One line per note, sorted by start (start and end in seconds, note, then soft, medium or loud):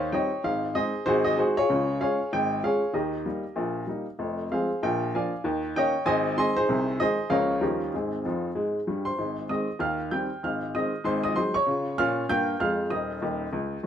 0.00 0.15 D#2 medium
0.00 0.14 D#3 medium
0.00 0.11 C5 medium
0.00 0.11 C#5 medium
0.00 0.13 F5 medium
0.12 0.30 G3 soft
0.12 0.30 C4 soft
0.12 0.30 D#4 soft
0.12 0.42 C#5 medium
0.12 0.42 D#5 medium
0.12 0.44 G5 medium
0.44 0.70 G#1 soft
0.44 0.70 G#2 medium
0.44 0.75 F5 medium
0.75 0.92 G#3 soft
0.75 0.92 C4 soft
0.75 0.93 D#4 medium
0.75 1.04 G#4 medium
0.75 1.04 C5 medium
0.75 1.06 D#5 medium
1.06 1.33 G#1 medium
1.06 1.33 G#2 medium
1.06 1.24 F#4 medium
1.06 1.24 G#4 medium
1.06 1.24 C5 loud
1.25 1.37 D#5 medium
1.37 1.55 G#3 soft
1.37 1.55 D#4 soft
1.37 1.55 F#4 medium
1.37 1.55 G#4 medium
1.37 1.56 C5 medium
1.57 1.98 F4 medium
1.57 1.98 G#4 medium
1.57 2.01 C#5 loud
1.70 1.96 C#2 medium
1.70 1.96 C#3 medium
2.01 2.18 G#3 soft
2.01 2.18 C#4 soft
2.01 2.18 F4 soft
2.01 2.30 G#4 medium
2.01 2.30 C#5 medium
2.01 2.32 F5 medium
2.33 2.59 G#1 medium
2.33 2.59 G#2 medium
2.33 2.63 G5 medium
2.63 2.80 G#3 soft
2.63 2.81 C#4 soft
2.63 2.81 F4 soft
2.63 2.93 G#4 medium
2.63 2.93 C#5 medium
2.63 2.95 F5 medium
2.93 3.20 D#2 medium
2.93 3.20 D#3 medium
2.93 3.84 G4 soft
2.93 3.84 A#4 soft
2.93 3.88 D#5 soft
3.26 3.43 G3 soft
3.26 3.43 A#3 soft
3.26 3.43 D#4 soft
3.56 3.83 A#1 medium
3.56 3.83 A#2 medium
3.87 4.04 G3 soft
3.87 4.05 A#3 soft
3.87 4.06 D#4 soft
4.19 4.45 F1 medium
4.19 4.46 F2 medium
4.52 4.69 F3 soft
4.52 4.68 G#3 soft
4.52 4.69 C4 soft
4.52 4.81 G#4 medium
4.52 4.81 C5 soft
4.52 4.82 F5 medium
4.83 5.09 A#1 medium
4.83 5.09 A#2 medium
4.83 5.13 G5 medium
5.14 5.31 F3 soft
5.14 5.31 A#3 soft
5.14 5.32 D4 soft
5.14 5.44 D5 medium
5.14 5.43 F5 medium
5.14 5.45 G#5 medium
5.44 5.71 D#2 medium
5.44 5.70 D#3 medium
5.76 5.93 D#3 soft
5.76 5.94 A#3 soft
5.76 5.94 C#4 medium
5.76 6.06 C#5 medium
5.76 6.05 D#5 medium
5.76 6.07 G5 medium
6.06 6.32 G#1 medium
6.06 6.33 G#2 medium
6.06 6.36 C5 medium
6.06 6.36 D#5 medium
6.06 6.37 G#5 medium
6.37 6.54 D#3 soft
6.37 6.55 G#3 soft
6.37 6.55 C4 medium
6.37 6.55 D#5 medium
6.37 6.55 G#5 medium
6.37 6.56 C6 medium
6.57 6.98 D#4 medium
6.57 6.98 G#4 medium
6.57 7.00 C5 loud
6.69 6.95 C2 medium
6.69 6.95 C3 medium
7.00 7.17 D#3 soft
7.00 7.17 G#3 soft
7.00 7.18 D#4 medium
7.00 7.30 G#4 medium
7.00 7.30 C5 medium
7.00 7.31 D#5 medium
7.30 7.57 C#2 medium
7.30 7.57 C#3 medium
7.30 7.48 F3 soft
7.30 7.48 A#3 soft
7.30 7.48 C#4 soft
7.30 7.59 A#4 medium
7.30 7.60 C#5 medium
7.30 7.62 F5 medium
7.60 7.88 D#2 medium
7.60 7.88 D#3 medium
7.60 7.78 F3 soft
7.60 7.79 G3 soft
7.60 7.79 C#4 soft
7.60 7.91 F4 soft
7.60 7.91 G4 soft
7.60 7.93 A#4 medium
7.94 8.20 G#1 soft
7.94 8.20 G#2 soft
7.94 9.02 C4 soft
7.94 9.02 D#4 soft
7.94 9.05 G#4 soft
8.25 8.48 F2 medium
8.25 8.48 F3 medium
8.55 8.79 G#2 soft
8.55 8.79 G#3 medium
8.87 9.11 G2 medium
8.87 9.10 G3 soft
9.05 9.47 C5 soft
9.05 9.49 C6 medium
9.18 9.44 G#1 soft
9.18 9.45 G#2 medium
9.49 9.67 D#3 soft
9.49 9.66 G#3 soft
9.49 9.67 C4 soft
9.49 9.79 D#5 soft
9.49 9.80 D#6 medium
9.79 10.06 D#2 medium
9.79 10.06 D#3 medium
9.79 10.09 F5 medium
9.79 10.11 F6 medium
10.11 10.29 D#3 soft
10.11 10.29 G3 soft
10.11 10.29 C4 soft
10.11 10.41 G5 medium
10.11 10.42 G6 medium
10.43 10.69 G#1 soft
10.43 10.70 G#2 medium
10.43 10.73 F5 soft
10.43 10.74 F6 medium
10.75 10.92 D#3 soft
10.75 10.92 G#3 soft
10.75 10.91 C4 soft
10.75 11.04 D#5 medium
10.75 11.05 D#6 medium
11.04 11.31 G#1 medium
11.04 11.31 G#2 medium
11.04 11.22 C5 medium
11.04 11.23 C6 medium
11.23 11.36 D#5 medium
11.23 11.36 D#6 medium
11.36 11.53 F#3 soft
11.36 11.53 G#3 soft
11.36 11.53 D#4 soft
11.36 11.53 C5 medium
11.36 11.54 C6 medium
11.54 11.96 C#5 medium
11.54 11.98 C#6 medium
11.66 11.91 C#3 medium
11.66 11.93 F4 medium
11.98 12.23 A#2 medium
11.98 12.24 C#4 medium
11.98 12.27 F5 medium
11.98 12.29 F6 loud
12.29 12.54 G2 medium
12.29 12.55 A#3 medium
12.29 12.58 G5 medium
12.29 12.60 G6 loud
12.60 12.85 F2 medium
12.60 12.85 G#3 medium
12.60 12.89 F5 medium
12.60 12.91 F6 medium
12.90 13.15 D#1 medium
12.90 13.15 D#2 medium
12.90 13.80 D#5 soft
12.90 13.84 D#6 medium
13.22 13.45 D#1 medium
13.22 13.45 D#2 medium
13.53 13.76 C#2 medium
13.83 13.87 D#1 medium
13.83 13.87 D#2 soft